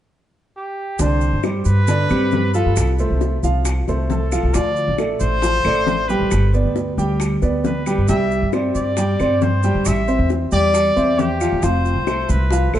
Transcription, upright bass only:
0.99 1.31 C2 medium
1.33 1.65 G2 medium
1.66 2.08 G2 medium
2.10 2.63 G2 medium
2.66 2.76 G2 medium
2.77 3.08 C2 medium
3.10 3.42 C2 medium
3.43 3.85 C2 medium
3.88 4.40 C2 medium
4.43 4.54 C2 medium
4.55 4.86 D2 medium
4.88 5.19 A1 medium
5.21 5.63 A1 medium
5.65 6.18 A1 medium
6.20 6.31 A1 medium
6.32 6.63 G1 medium
6.65 6.96 D2 medium
6.97 7.40 D2 medium
7.42 7.95 D2 medium
7.98 8.08 G2 medium
8.09 8.40 C2 loud
8.42 8.74 G2 medium
8.75 9.17 G2 medium
9.20 9.72 G2 medium
9.75 9.85 G2 medium
9.86 10.18 A1 loud
10.19 10.50 E2 medium
10.52 10.94 E2 medium
10.97 11.49 E2 medium
11.52 11.62 E2 medium
11.63 11.95 F1 loud
11.96 12.28 C2 medium
12.29 12.72 C2 loud
12.73 12.79 C2 medium

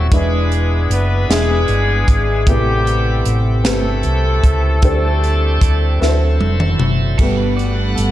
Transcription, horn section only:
0.00 0.12 F#3 medium
0.00 0.12 F#4 medium
0.14 0.92 G#3 medium
0.14 0.92 B3 medium
0.14 1.26 D4 medium
0.14 0.92 G#4 medium
0.92 1.27 B3 medium
0.92 1.27 B4 medium
1.32 2.45 G#3 medium
1.32 2.44 B3 medium
1.32 2.44 D4 medium
1.32 2.45 G#4 loud
2.47 3.38 G3 medium
2.47 3.61 B3 medium
2.47 3.61 C4 medium
2.47 3.38 G4 medium
3.65 6.76 A3 medium
3.65 6.76 C4 medium
3.65 6.75 E4 medium
3.65 6.76 A4 medium

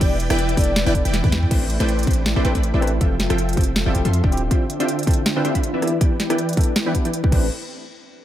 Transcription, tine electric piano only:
0.00 0.14 B3 medium
0.00 0.14 D4 medium
0.00 0.15 E4 medium
0.00 0.15 G4 loud
0.29 0.37 B3 medium
0.29 0.37 D4 medium
0.29 0.38 E4 medium
0.29 0.38 G4 loud
0.56 0.70 B3 medium
0.56 0.71 D4 medium
0.56 0.71 E4 medium
0.56 0.71 A4 loud
0.85 0.93 B3 loud
0.85 0.93 D4 medium
0.85 0.93 E4 medium
0.85 0.94 B4 loud
0.94 1.03 B3 medium
0.94 1.04 D4 medium
0.94 1.04 E4 medium
0.94 1.04 A4 medium
1.23 1.36 B3 medium
1.23 1.36 D4 medium
1.23 1.36 E4 medium
1.23 1.37 B4 loud
1.50 1.64 C4 medium
1.50 1.65 D4 medium
1.50 1.65 G4 medium
1.50 1.65 B4 medium
1.79 1.87 C4 medium
1.79 1.87 D4 medium
1.79 1.88 G4 medium
1.79 1.88 B4 medium
2.06 2.20 C4 medium
2.06 2.21 D4 medium
2.06 2.21 G4 medium
2.06 2.21 C5 medium
2.35 2.43 C4 medium
2.35 2.43 D4 medium
2.35 2.43 G4 medium
2.35 2.44 D5 loud
2.44 2.58 C4 medium
2.44 2.58 D4 medium
2.44 2.59 G4 medium
2.44 2.59 B4 medium
2.73 2.80 C4 medium
2.73 2.81 D4 medium
2.73 2.81 G4 medium
2.73 2.81 D5 medium
2.81 2.91 C4 medium
2.81 2.91 D4 medium
2.81 2.91 G4 medium
2.81 2.92 B4 loud
3.00 3.14 C4 medium
3.00 3.14 E4 medium
3.00 3.15 G4 medium
3.00 3.15 A4 medium
3.29 3.37 C4 medium
3.29 3.37 E4 medium
3.29 3.38 G4 medium
3.29 3.38 A4 medium
3.56 3.70 C4 medium
3.56 3.71 E4 medium
3.56 3.71 G4 medium
3.56 3.71 C5 medium
3.85 3.93 C4 loud
3.85 3.93 E4 medium
3.85 3.93 G4 medium
3.85 3.94 D5 loud
3.94 4.08 C4 medium
3.94 4.08 E4 medium
3.94 4.09 G4 medium
3.94 4.09 A4 medium
4.23 4.30 C4 medium
4.23 4.31 E4 medium
4.23 4.31 G4 medium
4.23 4.31 D5 medium
4.31 4.41 C4 loud
4.31 4.41 E4 medium
4.31 4.41 F4 medium
4.31 4.42 G4 loud
4.50 4.64 C4 medium
4.50 4.64 E4 medium
4.50 4.65 F4 medium
4.50 4.65 G4 medium
4.79 4.87 C4 medium
4.79 4.87 E4 medium
4.79 4.88 F4 medium
4.79 4.88 G4 medium
5.06 5.20 C4 medium
5.06 5.21 E4 medium
5.06 5.21 F4 medium
5.06 5.21 A4 medium
5.35 5.43 C4 loud
5.35 5.43 E4 medium
5.35 5.43 F4 medium
5.35 5.44 B4 loud
5.44 5.58 C4 medium
5.44 5.58 E4 medium
5.44 5.59 F4 medium
5.44 5.59 G4 loud
5.73 5.81 C4 medium
5.73 5.81 E4 medium
5.73 5.81 F4 medium
5.73 5.82 B4 medium
5.81 5.91 B3 loud
5.81 5.91 D4 medium
5.81 5.91 E4 medium
5.81 5.92 G4 loud
6.00 6.14 B3 medium
6.00 6.15 D4 medium
6.00 6.15 E4 medium
6.00 6.15 G4 medium
6.29 6.37 B3 medium
6.29 6.37 D4 medium
6.29 6.38 E4 medium
6.29 6.38 G4 medium
6.56 6.70 B3 medium
6.56 6.71 D4 medium
6.56 6.71 E4 medium
6.56 6.71 A4 loud
6.85 6.93 B3 loud
6.85 6.93 D4 medium
6.85 6.93 E4 medium
6.85 6.94 B4 loud
6.94 7.08 B3 medium
6.94 7.08 D4 medium
6.94 7.09 E4 medium
6.94 7.09 G4 loud
7.23 7.31 B3 medium
7.23 7.30 D4 medium
7.23 7.31 E4 medium
7.23 7.32 B4 medium
7.29 7.45 C4 medium
7.29 7.46 D4 medium
7.29 7.47 G4 medium
7.35 7.48 B4 medium

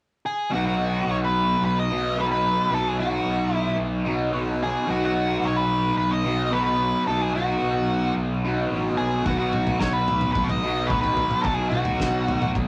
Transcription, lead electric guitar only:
0.26 0.53 G#4 medium
0.53 0.66 F#4 medium
0.67 1.09 F#4 medium
1.11 1.16 C#5 medium
1.24 1.64 B4 medium
1.65 1.77 B4 medium
1.79 2.19 D#5 medium
2.21 2.26 B4 medium
2.32 2.73 B4 medium
2.74 2.88 A4 medium
2.88 2.99 G#4 medium
2.99 3.55 F#4 medium
3.55 3.76 E4 medium
4.63 4.90 G#4 medium
4.91 5.04 F#4 medium
5.05 5.46 F#4 medium
5.45 5.56 C#5 medium
5.56 5.96 B4 medium
5.98 6.12 B4 medium
6.11 6.54 D#5 medium
6.53 6.63 B4 medium
6.64 7.03 B4 medium
7.07 7.22 A4 medium
7.22 7.35 G#4 medium
7.35 8.13 F#4 medium
8.97 9.24 G#4 medium
9.26 9.37 F#4 medium
9.39 9.82 F#4 medium
9.79 9.93 C#5 medium
9.93 10.31 B4 medium
10.32 10.48 B4 medium
10.44 10.89 D#5 medium
10.87 11.00 B4 medium
11.01 11.45 B4 medium
11.42 11.54 A4 medium
11.54 11.69 G#4 medium
11.69 12.50 F#4 medium

